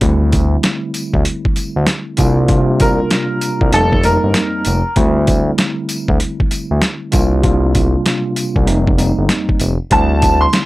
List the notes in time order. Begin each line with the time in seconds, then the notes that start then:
0.01 D2 D3 G3 A3 C4 E4, kick, closed hi-hat
0.32 kick, closed hi-hat, tambourine
0.63 snare, closed hi-hat
0.94 closed hi-hat, tambourine
1.14 D2, kick
1.25 closed hi-hat
1.45 kick
1.56 closed hi-hat, tambourine
1.76 D2
1.87 snare, closed hi-hat
2.17 C2 C3 G3 A#3 D4 F4, kick, closed hi-hat, tambourine
2.47 C3 G3 A#3 D4 F4, kick, closed hi-hat
2.80 A#4, kick, closed hi-hat, tambourine
3.11 snare, closed hi-hat
3.41 closed hi-hat, tambourine
3.61 C2, kick
3.71 F1 F2 G3 A#3 C4 D#4 A4, closed hi-hat
3.93 kick
4.03 F2 G3 A#3 C4 D#4 A#4, closed hi-hat, tambourine
4.24 G1
4.34 snare, closed hi-hat
4.65 F1, closed hi-hat, tambourine
4.96 D2 D3 G3 A3 C4 E4, kick, closed hi-hat
5.27 kick, closed hi-hat, tambourine
5.58 snare, closed hi-hat
5.89 closed hi-hat, tambourine
6.08 D2, kick
6.20 closed hi-hat
6.40 kick
6.51 closed hi-hat, tambourine
6.71 D2
6.82 snare, closed hi-hat
7.11 C2 C3 G3 A#3 D4 F4, kick, closed hi-hat, tambourine
7.42 C3 G3 A#3 D4 F4, kick, closed hi-hat
7.75 kick, closed hi-hat, tambourine
8.06 snare, closed hi-hat
8.36 closed hi-hat, tambourine
8.56 C2, kick
8.66 F1 F2 G3 A#3 C4 D#4, closed hi-hat
8.87 kick
8.97 F2 G3 A#3 C4 D#4, closed hi-hat, tambourine
9.18 G1
9.29 snare, closed hi-hat
9.49 kick
9.60 F1, closed hi-hat, tambourine
9.90 D2 D3 G3 A3 C4 E4 A5, kick, closed hi-hat
10.22 kick, closed hi-hat, tambourine
10.41 C6
10.53 snare, closed hi-hat